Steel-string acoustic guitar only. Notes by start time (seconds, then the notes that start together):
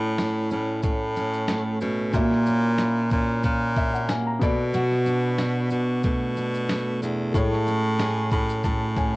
Already playing: A2 C#4 E4
0.19 E4
0.51 C#4
0.83 A3
1.17 C#4
1.49 A3
1.82 C#4
2.15 A#2 E4
2.48 C#4
2.80 E4
3.13 C#4
3.44 A#3
3.77 C#4
4.10 A#3
4.42 B2
4.74 B2 F#4
5.06 D4
5.39 F#4
5.71 D4
6.04 A3
6.37 D4
6.70 A3
7.02 D4
7.35 A2 G#4
7.68 C#4
8.00 G#4
8.33 C#4
8.66 A3
8.97 C#4